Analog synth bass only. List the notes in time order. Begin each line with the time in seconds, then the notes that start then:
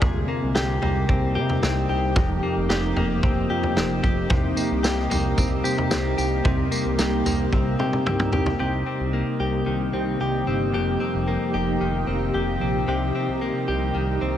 0.02 C2
0.43 C2
0.56 C2
0.83 C2
1.09 C2
1.36 C3
1.63 C2
1.90 C2
2.16 F1
2.57 F1
2.70 F1
2.96 F1
3.23 F1
3.51 F2
3.77 F1
4.04 F1
4.31 C2
4.72 C2
4.84 C2
5.11 C2
5.38 C2
5.64 C3
5.91 C2
6.18 C2
6.45 C2
6.86 C2
6.99 C2
7.26 C2
7.52 C2
7.80 C3
8.07 C2
8.33 C2
8.60 C2
9.00 C2
9.40 C2
9.67 C2
9.94 C2
10.20 C2
10.47 G1
10.75 F1
11.14 F1
11.54 F1
11.81 F1
12.08 F1
12.34 F1
12.61 A#1
12.88 C2
13.28 C2
13.68 C2
13.95 C2
14.22 C2